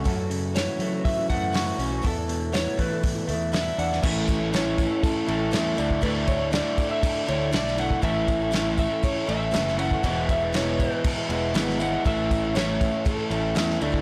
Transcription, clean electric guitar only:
\new Staff \with { instrumentName = "Clean electric guitar" } { \time 4/4 \key a \major \tempo 4 = 120 fis,8 cis8 e8 a8 e8 a8 fis'8 cis'8 | e,8 b,8 e8 a8 e8 a8 e'8 d'8 | <a, e a cis' e'>4 <a, e a cis' e'>4. <a cis' e'>8 <e a cis' e'>8 <d a d' e'>8 | <d a d' e'>4 <d a d' e'>4. <a d' e'>8 <d a d' e'>8 <a d' e'>8 |
<a, e a cis' e'>4 <a, e a cis' e'>4. <a cis' e'>8 <e a cis' e'>8 <a cis' e'>8 | <e, b, e gis b e'>4 <e, b, e gis b e'>4. <e gis b e'>8 <e gis b e'>8 <e gis b e'>8 | <a, e a cis' e'>4 <a, e a cis' e'>4. <a cis' e'>8 <e a cis' e'>8 <d a d' e'>8 | }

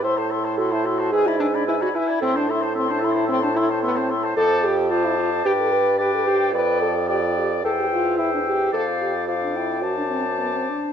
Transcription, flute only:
\new Staff \with { instrumentName = "Flute" } { \time 4/4 \key a \dorian \tempo 4 = 110 c'''16 a''16 c'''16 a''16 c'''16 a''16 c'''16 a''16 gis''16 b''16 gis''16 b''16 gis''16 b''16 gis''16 b''16 | c'''16 a''16 c'''16 a''16 c'''16 a''16 c'''16 a''16 c'''16 a''16 c'''16 a''16 c'''16 a''16 c'''16 a''16 | \key d \dorian a''4 a''4 g''4 g''4 | g''4 g''4 g''4 g''4 |
f''4 f''8 g''8 a''2 | }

